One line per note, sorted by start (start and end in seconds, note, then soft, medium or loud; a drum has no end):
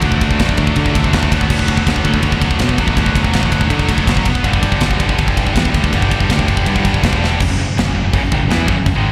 0.01 0.38 D2 loud
0.01 0.10 D3 medium
0.01 0.10 F#3 medium
0.01 0.57 A3 medium
0.01 0.59 D4 loud
0.01 kick medium
0.01 ride loud
0.10 0.17 D3 medium
0.10 0.18 F#3 medium
0.10 kick medium
0.18 0.24 D3 medium
0.18 0.25 F#3 medium
0.18 kick medium
0.18 ride medium
0.24 0.32 D3 medium
0.24 0.33 F#3 medium
0.31 0.39 D3 medium
0.31 0.40 F#3 medium
0.31 kick medium
0.39 0.57 A1 medium
0.39 0.47 D3 medium
0.39 0.47 F#3 medium
0.39 kick medium
0.39 snare loud
0.39 ride loud
0.47 0.55 D3 medium
0.47 0.56 F#3 medium
0.47 kick medium
0.55 0.75 D2 loud
0.55 0.62 D3 medium
0.55 0.63 F#3 medium
0.55 1.16 D4 medium
0.55 kick medium
0.55 ride medium
0.59 0.69 D3 medium
0.59 0.71 F#3 medium
0.59 1.13 A3 medium
0.67 0.77 D3 medium
0.67 kick medium
0.72 0.77 F#3 medium
0.76 0.94 D3 loud
0.76 0.85 D3 medium
0.76 0.85 F#3 medium
0.76 kick medium
0.76 ride loud
0.85 0.93 D3 medium
0.85 0.94 F#3 medium
0.85 kick medium
0.94 1.13 D2 medium
0.94 1.01 D3 medium
0.94 1.00 F#3 medium
0.94 kick loud
0.94 ride medium
1.00 1.07 D3 medium
1.00 1.08 F#3 medium
1.04 1.15 D3 medium
1.04 kick medium
1.09 1.16 F#3 medium
1.13 1.31 D2 medium
1.13 1.23 D3 medium
1.13 1.25 F#3 medium
1.13 1.31 A3 medium
1.13 1.33 D4 medium
1.13 kick medium
1.13 snare loud
1.13 ride loud
1.23 1.31 D3 medium
1.23 1.32 F#3 medium
1.23 kick medium
1.32 1.49 D2 medium
1.32 2.78 B2 medium
1.32 1.39 D3 medium
1.32 1.40 F#3 loud
1.32 1.87 B3 loud
1.32 1.88 D4 loud
1.32 kick medium
1.32 ride medium
1.40 1.46 D3 medium
1.40 1.48 F#3 medium
1.40 kick medium
1.46 1.86 D2 medium
1.46 1.54 D3 medium
1.46 1.56 F#3 medium
1.46 kick medium
1.46 crash loud
1.56 1.63 D3 medium
1.56 1.63 F#3 medium
1.56 kick medium
1.63 1.70 D3 medium
1.63 1.70 F#3 medium
1.68 1.77 D3 medium
1.68 1.78 F#3 medium
1.68 kick medium
1.68 ride medium
1.77 1.85 D3 medium
1.77 1.86 F#3 medium
1.77 kick medium
1.85 2.04 D2 loud
1.85 1.92 D3 medium
1.85 1.93 F#3 medium
1.85 2.42 B3 medium
1.85 2.41 D4 medium
1.85 kick medium
1.85 snare loud
1.85 ride loud
1.92 2.00 D3 medium
1.92 2.01 F#3 medium
1.92 kick medium
2.01 2.22 D2 loud
2.01 2.07 D3 medium
2.01 2.08 F#3 medium
2.01 kick medium
2.01 ride medium
2.08 2.15 D3 medium
2.08 2.16 F#3 medium
2.14 2.23 D3 medium
2.14 2.24 F#3 medium
2.14 kick medium
2.23 2.40 D2 loud
2.23 2.31 D3 medium
2.23 2.31 F#3 medium
2.23 kick medium
2.23 ride loud
2.31 2.38 D3 medium
2.31 2.39 F#3 medium
2.31 kick medium
2.39 2.59 D2 medium
2.39 2.46 D3 medium
2.39 2.46 F#3 medium
2.39 2.81 D4 medium
2.39 kick medium
2.39 ride medium
2.43 2.53 D3 medium
2.43 2.54 F#3 medium
2.43 2.80 B3 medium
2.51 2.61 D3 medium
2.51 kick medium
2.55 2.62 F#3 medium
2.59 2.77 B2 medium
2.59 2.68 D3 medium
2.59 2.69 F#3 medium
2.59 kick medium
2.59 snare loud
2.59 ride loud
2.69 2.76 D3 medium
2.69 2.77 F#3 medium
2.69 kick medium
2.78 2.96 A1 medium
2.78 4.25 B2 loud
2.78 2.86 D3 medium
2.78 2.86 F#3 loud
2.78 3.36 B3 loud
2.78 3.37 D4 loud
2.78 kick medium
2.78 ride medium
2.86 2.93 D3 medium
2.86 2.94 F#3 medium
2.86 kick medium
2.94 3.33 D2 loud
2.94 3.01 D3 medium
2.94 3.01 F#3 medium
2.94 kick medium
2.94 ride medium
3.01 3.08 D3 medium
3.01 3.09 F#3 medium
3.06 3.17 D3 medium
3.06 3.17 F#3 medium
3.06 kick medium
3.15 3.25 D3 medium
3.15 3.24 F#3 medium
3.15 kick medium
3.15 ride medium
3.24 3.33 D3 medium
3.24 3.32 F#3 medium
3.24 kick medium
3.33 3.51 A1 loud
3.33 3.40 D3 medium
3.33 3.41 F#3 medium
3.33 3.90 B3 medium
3.33 3.89 D4 loud
3.33 kick medium
3.33 snare loud
3.33 ride loud
3.40 3.47 D3 medium
3.40 3.49 F#3 medium
3.40 kick medium
3.48 3.70 D2 loud
3.48 3.55 D3 medium
3.48 3.57 F#3 medium
3.52 3.63 D3 medium
3.52 kick medium
3.52 ride medium
3.57 3.64 F#3 medium
3.57 kick medium
3.63 3.71 D3 medium
3.63 3.72 F#3 medium
3.70 3.89 D3 loud
3.70 3.79 D3 medium
3.70 3.79 F#3 medium
3.70 kick medium
3.70 ride loud
3.79 3.87 D3 medium
3.79 3.87 F#3 medium
3.79 kick medium
3.88 4.07 D2 medium
3.88 3.94 D3 medium
3.88 3.95 F#3 medium
3.88 4.46 B3 medium
3.88 4.46 D4 medium
3.88 kick medium
3.88 ride medium
3.95 4.02 D3 medium
3.95 4.03 F#3 medium
3.95 kick medium
4.03 4.10 D3 medium
4.03 4.11 F#3 medium
4.07 4.43 F#1 loud
4.07 4.18 F#3 medium
4.07 kick medium
4.07 snare loud
4.07 ride loud
4.12 4.18 D3 medium
4.17 4.26 D3 medium
4.17 4.26 F#3 medium
4.17 kick medium
4.25 kick loud
4.25 ride medium
4.35 kick medium
4.43 4.80 G1 loud
4.43 4.51 G2 medium
4.43 4.51 D3 loud
4.43 5.02 G3 loud
4.43 5.01 B3 loud
4.43 5.00 D4 loud
4.43 kick medium
4.43 ride loud
4.51 4.58 G2 medium
4.51 4.59 D3 medium
4.51 kick medium
4.58 4.66 G2 medium
4.58 4.66 D3 medium
4.63 4.74 G2 medium
4.63 4.74 D3 medium
4.63 kick medium
4.63 ride medium
4.72 4.82 G2 medium
4.72 4.82 D3 medium
4.72 kick medium
4.81 5.00 G1 loud
4.81 4.89 G2 medium
4.81 4.90 D3 medium
4.81 kick medium
4.81 snare loud
4.81 ride loud
4.90 4.97 G2 medium
4.90 4.98 D3 medium
4.90 kick medium
4.98 5.18 G1 loud
4.98 5.05 G2 medium
4.98 5.05 D3 medium
4.98 5.55 B3 medium
4.98 5.55 D4 medium
4.98 kick medium
4.98 ride medium
5.03 5.13 G2 medium
5.03 5.13 D3 medium
5.03 5.56 G3 medium
5.09 kick medium
5.14 5.21 G2 medium
5.14 5.21 D3 medium
5.18 5.36 G1 medium
5.18 5.29 G2 medium
5.18 5.29 D3 medium
5.18 kick medium
5.18 ride loud
5.28 5.37 G2 medium
5.28 5.35 D3 medium
5.28 kick loud
5.36 5.55 G1 medium
5.36 5.44 G2 medium
5.36 5.44 D3 medium
5.36 kick loud
5.36 ride medium
5.44 5.51 G2 medium
5.44 5.52 D3 medium
5.44 kick medium
5.52 5.59 G2 medium
5.52 5.60 D3 medium
5.56 5.73 E2 loud
5.56 5.92 G3 medium
5.56 5.93 B3 medium
5.56 5.93 D4 medium
5.56 kick medium
5.56 snare loud
5.56 ride loud
5.60 5.67 G2 medium
5.60 5.68 D3 medium
5.65 5.75 G2 medium
5.65 5.75 D3 medium
5.65 kick medium
5.74 5.92 D2 medium
5.74 5.83 G2 medium
5.74 5.84 D3 medium
5.74 kick medium
5.74 ride medium
5.84 5.92 G2 medium
5.84 5.92 D3 medium
5.84 kick medium
5.92 6.28 G1 loud
5.92 6.00 G2 medium
5.92 6.00 D3 medium
5.92 6.48 G3 medium
5.92 6.48 B3 medium
5.92 6.46 D4 loud
5.92 kick medium
5.92 ride medium
6.00 6.07 G2 medium
6.00 6.08 D3 medium
6.00 kick medium
6.08 6.15 G2 medium
6.08 6.15 D3 medium
6.08 kick medium
6.08 ride medium
6.15 6.23 G2 medium
6.15 6.23 D3 medium
6.20 6.30 G2 medium
6.20 6.31 D3 medium
6.20 kick medium
6.30 6.48 D2 medium
6.30 6.38 G2 medium
6.30 6.39 D3 medium
6.30 kick medium
6.30 snare loud
6.30 ride loud
6.38 6.46 G2 medium
6.38 6.46 D3 medium
6.38 kick medium
6.47 6.66 G1 medium
6.47 6.54 G2 medium
6.47 6.54 D3 medium
6.47 7.02 G3 medium
6.47 7.02 B3 medium
6.47 7.01 D4 medium
6.47 kick medium
6.47 ride medium
6.54 6.62 G2 medium
6.54 6.62 D3 medium
6.54 kick medium
6.62 6.70 G2 medium
6.62 6.69 D3 medium
6.66 6.84 G2 medium
6.66 6.77 G2 medium
6.66 6.77 D3 medium
6.66 kick medium
6.66 ride loud
6.76 6.84 G2 medium
6.76 6.85 D3 medium
6.76 kick loud
6.84 7.02 G1 medium
6.84 6.92 G2 medium
6.84 6.93 D3 medium
6.84 kick medium
6.84 ride medium
6.93 7.01 G2 medium
6.93 7.01 D3 medium
6.93 kick medium
7.02 7.38 E1 loud
7.02 7.08 G2 medium
7.02 7.08 D3 medium
7.02 7.39 G3 medium
7.02 kick loud
7.02 snare loud
7.02 ride loud
7.06 7.16 G2 medium
7.06 7.16 D3 medium
7.06 7.40 B3 medium
7.06 7.40 D4 medium
7.13 7.24 D3 medium
7.13 kick medium
7.17 7.24 G2 medium
7.24 7.31 G2 medium
7.24 7.32 D3 medium
7.24 snare medium
7.31 7.39 G2 medium
7.31 7.40 D3 medium
7.40 7.49 F#1 medium
7.40 7.47 F#2 medium
7.40 7.47 C#3 medium
7.40 kick medium
7.40 crash loud
7.40 crash medium
7.48 7.58 F#1 medium
7.48 7.58 F#2 medium
7.48 7.58 C#3 medium
7.59 7.76 F#1 medium
7.59 7.73 F#2 medium
7.59 7.73 C#3 medium
7.76 7.85 F#1 medium
7.76 7.84 F#2 medium
7.76 7.84 C#3 medium
7.76 snare loud
7.76 crash medium
7.85 7.95 F#1 medium
7.85 7.93 F#2 medium
7.85 7.94 C#3 medium
7.95 8.04 F#1 medium
7.95 8.02 F#2 medium
7.95 8.03 C#3 medium
8.04 8.13 F#1 medium
8.04 8.11 F#2 medium
8.04 8.12 C#3 medium
8.13 8.21 F#1 medium
8.13 8.21 F#2 loud
8.13 8.22 C#3 loud
8.13 kick loud
8.13 crash medium
8.21 8.30 F#1 medium
8.21 8.31 F#2 medium
8.21 8.31 C#3 medium
8.31 8.40 G#1 loud
8.31 8.40 G#2 medium
8.31 8.40 D#3 loud
8.31 kick loud
8.41 8.48 F#1 medium
8.41 8.50 F#2 medium
8.41 8.49 C#3 medium
8.48 8.66 E2 loud
8.48 8.67 E3 medium
8.48 8.67 B3 medium
8.48 8.68 E4 medium
8.48 snare loud
8.48 crash medium
8.68 8.76 F#1 medium
8.68 8.76 F#2 medium
8.68 8.76 C#3 loud
8.68 kick loud
8.77 8.86 F#1 medium
8.77 8.85 F#2 medium
8.77 8.85 C#3 medium
8.86 8.95 F#1 medium
8.86 8.94 F#2 medium
8.86 8.95 C#3 medium
8.86 kick medium
8.86 crash medium
8.95 9.12 G#1 loud
8.95 9.12 G#2 medium
8.95 9.12 D#3 medium
8.95 9.12 G#3 loud